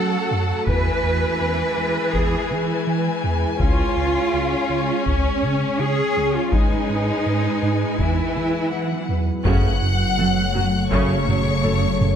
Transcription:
0.00 0.16 F#3 medium
0.00 0.63 F#3 medium
0.00 0.67 A3 medium
0.00 0.67 C#4 medium
0.00 0.67 F#4 medium
0.00 0.67 A4 medium
0.00 0.68 A4 medium
0.00 0.67 F#5 medium
0.00 0.67 A5 medium
0.31 0.53 F#2 medium
0.67 0.90 E2 medium
0.67 3.56 E3 medium
0.67 6.52 G#3 medium
0.67 3.60 E4 medium
0.67 6.52 G#4 medium
0.67 2.11 B4 medium
0.67 3.56 B4 medium
0.67 3.60 B4 medium
0.67 6.51 G#5 medium
0.67 taiko medium
1.04 1.26 E2 medium
1.41 1.63 E2 medium
1.77 1.99 E2 medium
2.13 2.36 E2 medium
2.13 2.50 G#4 medium
2.13 taiko medium
2.51 2.72 E3 medium
2.87 3.09 E3 soft
3.24 3.46 E2 medium
3.59 3.82 C#2 medium
3.59 6.48 C#4 medium
3.59 6.53 C#4 medium
3.59 5.02 F4 medium
3.59 6.52 C#5 medium
3.59 6.53 C#5 medium
3.59 taiko medium
3.96 4.18 C#2 medium
4.34 4.55 C#2 medium
4.69 4.91 C#2 medium
5.06 5.28 C#2 medium
5.06 5.79 C#4 medium
5.06 taiko medium
5.43 5.65 C#3 soft
5.79 6.01 C#3 medium
5.79 6.35 G#4 medium
6.16 6.38 C#2 medium
6.35 6.53 F4 medium
6.52 6.75 G#2 medium
6.52 7.96 G#3 medium
6.52 7.95 G#3 medium
6.52 7.99 D#4 medium
6.52 7.95 G#4 medium
6.52 9.21 B4 medium
6.52 9.46 B4 medium
6.52 8.68 G#5 medium
6.52 taiko medium
6.90 7.11 G#2 soft
7.26 7.48 G#2 soft
7.63 7.84 G#2 medium
7.98 8.21 E2 medium
7.98 9.25 E3 medium
7.98 9.44 F#3 medium
7.98 9.46 B3 medium
7.98 9.09 E4 medium
7.98 9.45 E4 medium
7.98 taiko medium
8.35 8.57 E3 medium
8.72 8.94 E3 medium
8.72 9.25 F#5 soft
9.09 9.31 E2 medium
9.44 12.16 F#1 medium
9.44 9.53 F#2 medium
9.44 9.67 F#2 medium
9.44 9.79 C#3 medium
9.44 9.71 C#3 medium
9.44 12.16 F#3 medium
9.44 10.88 F#3 medium
9.44 12.16 A3 medium
9.44 9.71 A3 medium
9.44 9.79 C#4 medium
9.44 9.71 C#4 medium
9.44 9.71 F#4 medium
9.44 12.16 A4 medium
9.44 12.16 C#5 medium
9.44 10.88 F#5 medium
9.44 10.87 F#6 medium
9.44 taiko loud
9.82 10.04 F#2 medium
10.18 10.26 F#2 soft
10.18 10.40 F#3 medium
10.18 10.26 A3 soft
10.18 10.26 A4 soft
10.54 10.62 F#2 soft
10.54 10.77 F#2 medium
10.54 10.62 F#3 medium
10.54 10.62 F#4 soft
10.90 10.99 F#2 medium
10.90 11.14 F#2 medium
10.90 11.25 C#3 medium
10.90 12.16 C#3 medium
10.90 11.17 C#3 medium
10.90 11.17 A3 medium
10.90 11.25 C#4 medium
10.90 11.18 C#4 medium
10.90 11.18 F#4 medium
10.90 12.16 C#5 medium
10.90 12.16 C#6 medium
10.90 taiko medium
11.27 11.36 F#2 medium
11.27 11.50 F#2 medium
11.27 11.35 F#3 soft
11.27 11.35 F#4 soft
11.27 taiko mid soft
11.63 11.72 F#2 soft
11.63 11.86 F#2 medium
11.63 11.71 A3 medium
11.63 11.72 A4 soft
12.01 12.16 F#2 medium
12.01 taiko mid soft

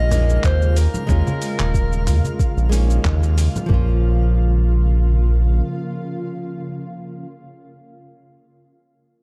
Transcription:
0.00 0.38 A#1 loud
0.00 3.66 C#3 medium
0.00 3.66 G#3 medium
0.00 3.66 F4 medium
0.00 0.41 D#5 loud
0.00 3.71 F5 medium
0.00 3.71 F6 medium
0.09 1.04 G#3 medium
0.09 1.05 A#3 medium
0.09 1.06 C#4 medium
0.09 mid tom medium
0.09 open hi-hat medium
0.09 cabasa medium
0.14 1.07 D#4 medium
0.29 cabasa soft
0.44 0.88 D#2 loud
0.44 0.80 C5 loud
0.44 kick loud
0.44 clap medium
0.44 cabasa soft
0.62 cabasa soft
0.77 3.06 A#4 medium
0.77 open hi-hat medium
0.77 cabasa medium
0.94 low conga medium
0.94 cabasa soft
1.07 1.23 D#2 medium
1.07 2.68 G#3 medium
1.07 2.69 A#3 medium
1.07 2.70 C#4 medium
1.07 kick loud
1.07 mid tom medium
1.07 cabasa soft
1.12 2.71 F4 medium
1.27 high conga medium
1.27 cabasa soft
1.42 open hi-hat medium
1.42 cabasa medium
1.59 2.09 D#1 medium
1.59 clap medium
1.59 high conga medium
1.59 cabasa soft
1.74 kick loud
1.74 cabasa soft
1.92 cabasa soft
2.07 2.21 D#2 medium
2.07 mid tom medium
2.07 open hi-hat medium
2.07 cabasa medium
2.25 high conga medium
2.25 cabasa soft
2.40 kick loud
2.40 cabasa soft
2.57 2.99 A#1 loud
2.57 cabasa soft
2.69 3.65 G#3 medium
2.69 3.66 A#3 medium
2.69 3.67 C#4 medium
2.69 open hi-hat medium
2.69 cabasa medium
2.75 3.68 D#4 medium
2.90 cabasa soft
3.05 3.48 D#2 loud
3.05 kick medium
3.05 clap medium
3.05 mid tom medium
3.05 cabasa soft
3.23 cabasa soft
3.38 open hi-hat medium
3.38 cabasa medium
3.56 low conga medium
3.56 cabasa soft
3.66 5.62 A#1 medium
3.66 7.07 C#3 medium
3.66 7.25 F3 medium
3.66 7.28 A#3 medium
3.66 7.07 A#3 medium
3.66 7.07 F4 medium
3.66 kick loud
3.66 floor tom loud
3.71 7.30 C#4 medium
3.71 7.33 F4 loud

